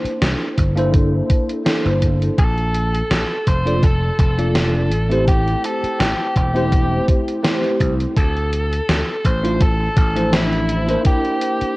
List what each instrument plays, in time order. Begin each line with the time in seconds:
Already playing: tine electric piano A#3 D4 E4 A4 C5
0.04 muted slap bass stroke, closed hi-hat
0.21 slap bass C2, snare, closed hi-hat
0.58 slap bass G1, kick, closed hi-hat
0.75 tine electric piano A#3 D4 E4 A4 C5, closed hi-hat
0.94 kick, closed hi-hat
1.30 kick, closed hi-hat
1.49 closed hi-hat
1.65 tine electric piano A#3 D4 E4 A4 C5, snare, closed hi-hat
1.86 slap bass G1, closed hi-hat
2.02 kick, closed hi-hat
2.22 closed hi-hat
2.38 slap bass A#1, lead electric guitar A4, kick, closed hi-hat
2.58 closed hi-hat
2.75 closed hi-hat
2.95 closed hi-hat
3.11 slap bass A#1, snare, closed hi-hat
3.47 slap bass F1, lead electric guitar C5, kick, closed hi-hat
3.65 tine electric piano A#3 D4 F4 A4 D5, closed hi-hat
3.83 lead electric guitar A4, kick, closed hi-hat
4.19 slap bass F1, lead electric guitar A4, kick, closed hi-hat
4.38 tine electric piano A#3 D4 F4 A4 D5, closed hi-hat
4.55 snare, closed hi-hat
4.75 closed hi-hat
4.91 slap bass A1, closed hi-hat
5.09 tine electric piano A3 C4 E4 G4 C5, closed hi-hat
5.28 lead electric guitar G4, kick, closed hi-hat
5.48 closed hi-hat
5.64 lead electric guitar A4, closed hi-hat
5.83 muted slap bass stroke, closed hi-hat
6.00 slap bass A1, lead electric guitar G4, snare, closed hi-hat
6.36 slap bass E1, lead electric guitar G4, kick, closed hi-hat
6.54 tine electric piano A3 C4 E4 G4 C5, closed hi-hat
6.72 kick, closed hi-hat
7.08 kick, closed hi-hat
7.28 closed hi-hat
7.43 tine electric piano A3 C4 E4 G4 C5, snare, closed hi-hat
7.64 closed hi-hat
7.80 slap bass C2, kick, closed hi-hat
8.00 closed hi-hat
8.16 slap bass D2, lead electric guitar A4, kick, closed hi-hat
8.36 closed hi-hat
8.53 closed hi-hat
8.73 closed hi-hat
8.89 slap bass D2, snare, closed hi-hat
9.25 slap bass A1, lead electric guitar C5, kick, closed hi-hat
9.43 tine electric piano A3 D4 E4 F4 C5, closed hi-hat
9.61 lead electric guitar A4, kick, closed hi-hat
9.97 slap bass A1, lead electric guitar A4, kick, closed hi-hat
10.16 tine electric piano F3 A3 D4 E4 C5, closed hi-hat
10.33 lead electric guitar E4, snare, closed hi-hat
10.53 closed hi-hat
10.69 closed hi-hat
10.87 tine electric piano A#3 D4 E4 A#4 C5, closed hi-hat
11.05 lead electric guitar G4, kick, closed hi-hat
11.25 closed hi-hat
11.42 closed hi-hat
11.61 muted slap bass stroke, closed hi-hat